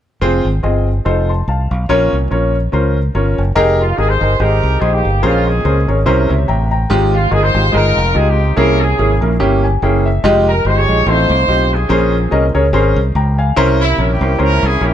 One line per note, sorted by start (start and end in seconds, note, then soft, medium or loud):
0.21 0.41 F1 medium
0.21 0.45 C4 loud
0.21 0.45 F4 medium
0.21 0.45 G#4 medium
0.21 0.46 C5 loud
0.45 0.61 G#1 medium
0.63 0.99 G1 medium
0.63 0.87 C4 medium
0.63 0.87 F4 medium
0.63 0.87 G#4 medium
0.63 0.87 D#5 medium
1.05 1.41 F1 medium
1.05 1.29 D#4 medium
1.05 1.29 F4 medium
1.05 1.29 A4 medium
1.05 1.29 C5 medium
1.29 1.47 A5 soft
1.29 1.46 C6 medium
1.48 1.67 C2 medium
1.48 1.70 F5 medium
1.48 1.70 A5 medium
1.71 1.87 B1 medium
1.71 2.10 F5 medium
1.89 2.09 A#1 loud
1.89 2.50 A#2 medium
1.89 2.13 C#4 loud
1.89 2.13 F4 loud
1.89 2.13 A#4 medium
1.89 2.13 C#5 loud
2.13 2.28 C2 medium
2.31 2.67 A#1 medium
2.31 2.55 C#4 medium
2.31 2.55 F4 medium
2.31 2.55 A#4 medium
2.31 2.55 C#5 medium
2.72 3.08 C#2 medium
2.72 2.96 C#4 medium
2.72 2.97 F4 medium
2.72 2.97 A#4 medium
2.72 2.97 C5 medium
3.15 3.34 G1 medium
3.15 3.39 C#4 medium
3.15 3.39 F4 medium
3.15 3.39 A#4 medium
3.15 3.39 C#5 medium
3.38 3.54 F#1 medium
3.56 3.92 F1 loud
3.56 3.80 D#4 loud
3.56 3.80 G4 loud
3.56 3.80 G#4 loud
3.56 3.80 A#4 loud
3.79 3.96 F4 medium
3.96 4.18 G#1 medium
3.96 4.10 D#4 medium
3.96 4.10 G4 medium
3.96 4.08 G#4 medium
3.96 4.10 G#4 medium
3.96 4.10 A#4 medium
4.09 4.39 D#4 medium
4.09 4.79 G#4 medium
4.09 4.39 C5 loud
4.21 4.37 G1 medium
4.21 4.31 D#4 medium
4.21 4.31 G4 medium
4.21 4.31 G#4 medium
4.21 4.31 A#4 medium
4.40 4.59 G#1 medium
4.40 4.64 D#4 medium
4.40 4.91 D#4 medium
4.40 4.91 G4 medium
4.40 4.64 G4 medium
4.40 4.64 G#4 medium
4.40 4.81 A#4 loud
4.40 4.64 C5 medium
4.63 4.79 C2 loud
4.80 5.01 A#1 loud
4.80 5.05 D#4 medium
4.80 5.05 G4 medium
4.80 4.92 G#4 medium
4.80 5.05 G#4 medium
4.80 5.05 C5 medium
4.92 5.21 A#3 medium
4.92 5.21 D#4 medium
4.92 5.23 G4 medium
5.05 5.21 G1 medium
5.23 5.59 A#1 loud
5.23 5.84 A#2 medium
5.23 6.03 G#3 medium
5.23 5.47 C#4 medium
5.23 5.45 C#4 medium
5.23 5.45 F4 medium
5.23 5.47 G#4 medium
5.23 5.47 A#4 medium
5.23 5.47 C5 loud
5.46 6.02 C4 medium
5.46 6.03 C#4 medium
5.46 5.88 G#4 medium
5.65 5.85 C#2 medium
5.65 5.77 C#4 medium
5.65 5.77 G#4 medium
5.65 5.77 A#4 medium
5.65 5.77 C5 medium
5.88 6.04 G#1 medium
5.88 5.98 C#4 medium
5.88 5.98 G#4 medium
5.88 5.98 A#4 medium
5.88 5.98 C#5 medium
6.06 6.27 C2 loud
6.06 6.68 C3 medium
6.06 6.30 C#4 medium
6.06 6.30 E4 medium
6.06 6.31 A#4 medium
6.06 6.30 C5 loud
6.29 6.46 C#2 medium
6.29 6.47 C#5 medium
6.29 6.47 E5 medium
6.48 6.84 A1 medium
6.48 6.71 E5 medium
6.48 6.70 G5 medium
6.48 6.70 A#5 medium
6.71 7.11 G5 medium
6.71 7.11 A#5 medium
6.90 7.26 G#1 loud
6.90 7.51 G#2 medium
6.90 7.14 G#3 loud
6.90 7.14 D#4 loud
6.90 7.14 F4 loud
6.90 7.14 G4 loud
7.14 7.31 F4 medium
7.31 7.51 G1 medium
7.31 7.43 G#3 medium
7.31 7.43 D#4 medium
7.31 7.44 F4 medium
7.31 7.43 G#4 loud
7.31 7.44 A#4 medium
7.43 7.73 D#4 medium
7.43 7.73 F4 medium
7.43 7.73 C5 loud
7.54 7.70 G#1 medium
7.54 7.65 G#3 medium
7.54 7.64 D#4 medium
7.54 7.65 F4 medium
7.54 7.65 G4 medium
7.72 7.93 G1 medium
7.72 7.97 G#3 medium
7.72 7.97 D#4 medium
7.72 8.27 D#4 medium
7.72 7.97 F4 medium
7.72 8.54 F4 medium
7.72 7.97 G#4 medium
7.72 8.15 A#4 loud
7.97 8.13 F1 medium
8.14 8.51 C#2 medium
8.14 8.39 G#3 medium
8.14 8.39 D#4 medium
8.14 8.39 F4 medium
8.14 8.39 G4 medium
8.14 8.27 G#4 medium
8.28 8.55 C4 medium
8.28 8.56 D#4 medium
8.28 8.58 G4 medium
8.56 8.93 C2 loud
8.56 9.18 C3 medium
8.56 8.81 A#3 loud
8.56 8.81 C#4 medium
8.56 8.79 C#4 medium
8.56 8.79 E4 medium
8.56 8.81 E4 medium
8.56 8.81 G#4 loud
8.56 8.80 A#4 loud
8.80 9.60 C#4 medium
8.80 9.60 E4 medium
8.80 9.22 G#4 medium
8.99 9.19 G#1 medium
8.99 9.11 A#3 medium
8.99 9.11 C#4 medium
8.99 9.11 E4 medium
8.99 9.11 G#4 medium
9.21 9.38 A#1 medium
9.21 9.31 A#3 medium
9.21 9.31 C#4 medium
9.21 9.32 E4 medium
9.21 9.32 A#4 medium
9.40 9.76 G1 medium
9.40 9.64 A#3 medium
9.40 9.64 C#4 medium
9.40 9.64 E4 medium
9.40 9.64 G4 loud
9.64 9.81 G#5 medium
9.82 10.18 F#1 medium
9.82 10.06 A#3 medium
9.82 10.07 C#4 medium
9.82 10.07 E4 medium
9.82 10.06 G#4 medium
9.82 10.04 G5 medium
10.06 10.23 E5 medium
10.24 10.59 F1 medium
10.24 10.48 G#3 loud
10.24 10.48 D#4 loud
10.24 10.48 F4 loud
10.24 10.48 G4 loud
10.48 10.65 A#4 medium
10.65 10.85 G1 medium
10.65 10.78 G#3 medium
10.65 10.78 D#4 medium
10.65 10.78 F4 medium
10.65 10.78 G4 medium
10.65 10.78 C5 loud
10.77 11.05 G4 medium
10.77 11.05 G#4 medium
10.77 11.07 C#5 loud
10.88 11.04 A#1 medium
10.88 10.98 G#3 medium
10.88 10.98 D#4 medium
10.88 10.98 F4 medium
10.88 10.98 G#4 medium
11.06 11.26 A1 loud
11.06 11.68 A2 medium
11.06 11.31 C4 medium
11.06 11.86 D#4 medium
11.06 11.31 D#4 medium
11.06 11.86 F4 medium
11.06 11.31 F4 medium
11.06 11.31 A4 medium
11.06 11.72 C5 loud
11.30 11.46 C2 medium
11.48 11.84 B1 medium
11.48 11.73 C4 medium
11.48 11.73 D#4 medium
11.48 11.73 F4 medium
11.48 11.73 G4 medium
11.73 12.52 C4 medium
11.73 12.52 C#4 medium
11.73 12.33 G#4 medium
11.89 12.25 A#1 loud
11.89 12.51 A#2 medium
11.89 12.14 C#4 loud
11.89 12.14 G#4 medium
11.89 12.14 A#4 medium
11.89 12.14 C5 loud
12.31 12.52 C2 medium
12.31 12.44 C#4 medium
12.31 12.44 G#4 medium
12.31 12.44 A#4 medium
12.31 12.44 D#5 medium
12.55 12.71 C#2 medium
12.55 12.65 C#4 medium
12.55 12.65 G#4 medium
12.55 12.65 A#4 medium
12.55 12.65 C#5 medium
12.73 12.93 G#1 medium
12.73 12.97 C#4 medium
12.73 12.97 G#4 medium
12.73 12.98 A#4 medium
12.73 12.98 C5 loud
12.96 13.12 C2 loud
13.15 13.51 C#2 medium
13.15 13.38 G5 medium
13.15 13.38 A#5 medium
13.38 13.78 F5 medium
13.38 13.78 G#5 medium
13.56 13.92 C2 loud
13.56 14.18 C3 medium
13.56 13.81 C#4 loud
13.56 13.81 E4 loud
13.56 13.81 A#4 loud
13.56 13.81 C5 loud
13.80 14.59 G3 medium
13.80 14.10 A#3 medium
13.80 14.08 E4 medium
13.98 14.18 A#1 medium
13.98 14.10 C#4 medium
13.98 14.11 E4 medium
13.98 14.11 A#4 medium
13.98 14.11 C#5 medium
14.11 14.90 A#3 medium
14.11 14.40 E4 medium
14.11 14.41 G4 loud
14.21 14.37 C2 medium
14.21 14.31 C#4 medium
14.21 14.31 E4 medium
14.21 14.31 A#4 medium
14.21 14.31 C5 medium
14.38 14.60 C#2 medium
14.38 14.63 C#4 medium
14.38 14.94 C#4 medium
14.38 14.63 E4 medium
14.38 14.94 E4 medium
14.38 14.63 A#4 medium
14.38 14.64 A#4 loud
14.38 14.64 C5 medium
14.63 14.79 C2 loud
14.63 14.82 G#4 loud
14.81 14.94 A#1 medium
14.81 14.94 C#4 medium
14.81 14.94 E4 medium
14.81 14.94 G4 loud
14.81 14.94 A#4 medium
14.81 14.94 C#5 medium